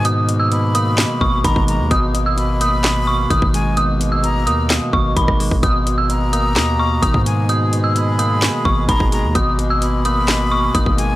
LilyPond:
<<
  \new Staff \with { instrumentName = "Synth bell" } { \time 4/4 \key gis \minor \tempo 4 = 129 dis'''8. e'''16 r8 dis'''4 cis'''8 b''8 r8 | dis'''8. e'''16 r8 dis'''4 cis'''8 dis'''8 r8 | dis'''8. e'''16 r8 dis'''4 cis'''8 b''8 r8 | dis'''8. e'''16 r8 dis'''4 cis'''8 dis'''8 r8 |
dis'''8. e'''16 r8 dis'''4 cis'''8 b''8 r8 | dis'''8. e'''16 r8 dis'''4 cis'''8 dis'''8 r8 | }
  \new Staff \with { instrumentName = "Flute" } { \time 4/4 \key gis \minor r4 b''2 ais''8 ais''8 | r4 b''2~ b''8 gis''8 | r4 ais''4 r2 | r4 ais''2~ ais''8 gis''8 |
r4 b''2 ais''8 ais''8 | r4 b''2~ b''8 gis''8 | }
  \new Staff \with { instrumentName = "Accordion" } { \clef bass \time 4/4 \key gis \minor << { ais1~ | ais1~ | ais1~ | ais1 |
gis'1 | ais1 | } \\ { <b, gis>1~ | <b, gis>1~ | <b, gis>1 | <b, gis>1~ |
<b, gis>1~ | <b, gis>1 | } >> }
  \new Staff \with { instrumentName = "Tine electric piano" } { \clef bass \time 4/4 \key gis \minor <b, dis gis>8 b,8 b,8 ais8 b,4 dis8 gis8 | b,8 b,8 b,8 ais8 b,4 dis8 gis8 | b,8 b,8 b,8 ais8 b,4 dis8 gis8 | b,8 b,8 b,8 ais8 b,4 dis8 gis8 |
b,8 b,8 b,8 ais8 b,4 dis8 gis8 | b,8 b,8 b,8 ais8 b,4 dis8 gis8 | }
  \new Staff \with { instrumentName = "808-style bass" } { \clef bass \time 4/4 \key gis \minor gis,2~ gis,16 r16 gis,,8 gis,,16 gis,,8 dis,16 | gis,,2. gis,,16 gis,,8.~ | gis,,4. dis,8. r16 gis,,8 gis,,16 gis,,8 gis,,16 | gis,,2 dis,4 gis,,16 gis,8.~ |
gis,2~ gis,16 r16 gis,,8 gis,,16 gis,,8 dis,16 | gis,,2. gis,,16 gis,,8. | }
  \new DrumStaff \with { instrumentName = "Drums" } \drummode { \time 4/4 hh8 hh8 hh8 hh8 <hc hh sn>8 bd8 <hh bd>16 bd16 hh8 | <hh bd>8 hh8 hh8 hh8 <hc hh sn>4 <hh bd>16 bd16 hh8 | hh8 hh8 hh8 hh8 <hc hh sn>8 bd8 <hh bd>16 <bd ss>16 hho16 bd16 | <hh bd>8 hh8 hh8 hh8 <hc hh sn>4 <hh bd>16 bd16 hh8 |
hh8 hh8 hh8 hh8 <hc hh sn>8 bd8 <hh bd>16 bd16 hh8 | <hh bd>8 hh8 hh8 hh8 <hc hh sn>4 <hh bd>16 bd16 hh8 | }
>>